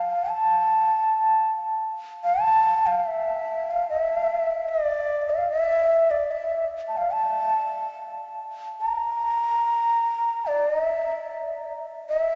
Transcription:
bansuri
Already playing: F5
0.30 A5
2.24 A5
2.86 F5
2.99 F5
3.06 E5
3.71 F5
3.89 E5
4.69 D5
5.30 F5
5.50 E5
6.11 D5
6.31 E5
6.88 A5
6.93 A5
6.97 F5
7.12 A5
8.80 A#5
10.47 D5
10.69 D#5
10.84 E5
12.09 E5

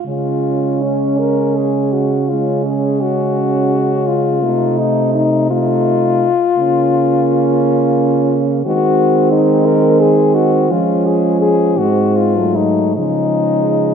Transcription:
french horn
0.05 C#3 G#3 C#4 F4
0.82 C#4
1.19 A#4
1.57 G#4
1.93 F#4
2.29 G#3 C#4 F4
2.65 G#4
3.01 F#4
4.07 F4
4.42 C3 A3 D#4
4.79 D#4
5.15 D#4
5.51 A3 D#4 F4
6.57 C#3 A#3 C#4
8.65 D#3 G#3 C4 F#4
9.32 D#4
9.66 A#4
10.00 G#4
10.35 F#4
10.70 F3 G#3 C#4 F4
11.06 G#4
11.42 G#4
11.78 G#2 G#3 C4 F#4
12.17 F4
12.36 F#3 A3
12.56 D#4
12.96 C#3 F3 G#3 D#4

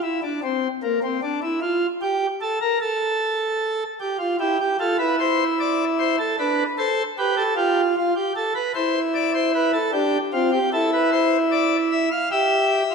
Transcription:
pipe organ
0.03 E4
0.23 D4
0.43 C4
0.83 A#3
1.03 C4
1.23 D4
1.43 E4
1.62 F4
2.02 G4
2.41 A4
2.61 A#4
2.81 A4
4.01 G4
4.19 F4
4.40 E4 G4
4.60 G4
4.80 F4 A4
4.98 E4 B4
5.20 C5
5.60 D5
5.99 C5
6.19 A4
6.39 D4 B4
6.78 A4 C5
7.18 G4 B4
7.37 A4
7.56 F4 G4
7.97 F4
8.16 G4
8.36 A4
8.55 B4
8.75 E4 C5
9.15 D5
9.34 C5
9.54 B4
9.73 A4
9.93 D4 G4
10.33 C4 F4
10.52 G4
10.73 E4 A4
10.93 B4
11.12 C5
11.52 D5
11.92 E5
12.12 F5
12.31 G4 E5
12.91 F4

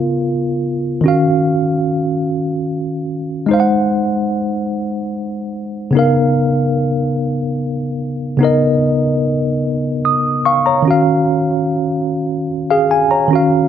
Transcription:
tine electric piano
Already playing: C#3 B3 F4 A#4 F5
1.01 D#3 C#4
1.06 F#4 F5
3.46 G#3 D#4
3.51 C5 F5
3.60 F#5
5.91 C#3 B3
5.95 D#4 A#4 F5
8.37 C#3 B3 D#4
8.43 A#4 D#5
10.05 D#6
10.46 F5 C#6
10.66 C#5 A#5
10.82 D#3 C#4
10.88 F#4 F5
12.71 G#4 F5
12.91 G#5
13.11 C#5 A#5
13.28 D#3 C#4
13.33 F#4 F5

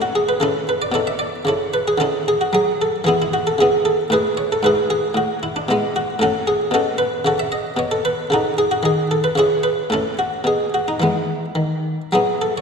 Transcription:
harpsichord
Already playing: A2
0.02 F#4
0.15 G#4
0.29 B4
0.40 C#3 C#4 E4 A4
0.69 B4
0.82 D5
0.92 B2 E4 A4 C#5
1.07 E5
1.19 D5
1.45 C#3 A4 C#5
1.49 E4
1.74 B4
1.88 G#4
1.98 D3 C#4 E4 A4
2.28 G#4
2.41 F#4
2.53 F#3 G#4
2.82 A4
3.04 E3 B3 G#4
3.08 E4
3.22 E4
3.34 F#4
3.47 A4
3.58 C#3 B3 E4 G#4
3.85 A4
4.10 A2 E4 G#4 B4
4.37 C#5
4.52 A4
4.63 G#2 E4 G#4 B4
4.90 G#4
5.14 A2 F#4
5.43 E4
5.56 D4
5.68 B2 G#3 B3 E4
5.96 F#4
6.19 A2 C#4 F#4 A4
6.47 G#4
6.71 B2 C#4 F#4 A4
6.98 B4
7.25 C#3 F#4 A4 C#5
7.39 E5
7.52 D#5
7.77 B2 C#5
7.91 A4
8.05 B4
8.30 C#3 D#4 F#4 A4
8.58 G#4
8.71 F#4
8.83 D#3 G#4
9.11 A4
9.24 B4
9.35 C#3 E4 G#4 C#5
9.63 B4
9.90 A2 C#4 E4 A4
10.19 F#4
10.44 B2 G#4
10.74 F#4
10.88 D#4
11.00 E3 G#3 B3 E4
11.55 D#3
12.12 F#3 B3 E4 G#4
12.42 A4
12.58 C#5

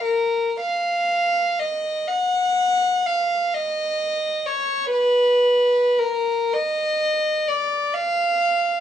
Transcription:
violin
0.04 A#4
0.60 F5
1.59 D#5
2.08 F#5
3.06 F5
3.54 D#5
4.46 C#5
4.93 B4
5.99 A#4
6.53 D#5
7.48 D5
7.94 F5

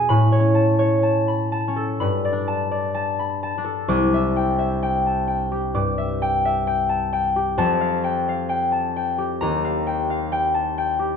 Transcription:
harp
Already playing: B2 G#4 F#5 G#5
0.09 A2 B5
0.32 C#5
0.39 C#4
0.55 A5
0.79 C#5
1.03 A5
1.28 B5
1.52 A5
1.68 C#4
1.76 A4
2.00 G2 B5
2.25 D5
2.32 D4
2.48 A5
2.71 D5
2.94 A5
3.19 B5
3.43 A5
3.58 D4
3.64 A4
3.88 C2 D6
4.14 E5
4.36 G5
4.59 E5
4.83 G5
5.06 A5
5.27 G5
5.52 G4
5.74 G2 D6
5.98 E5
6.22 G5
6.45 E5
6.67 G5
6.89 A5
7.13 G5
7.36 G4
7.58 F2 A5
7.81 F5
8.04 G5
8.29 F5
8.49 G5
8.72 A5
8.96 G5
9.18 G4
9.41 D#2 A#5
9.64 F5
9.87 G5
10.10 F5
10.32 G5
10.54 A5
10.78 G5
10.99 G4

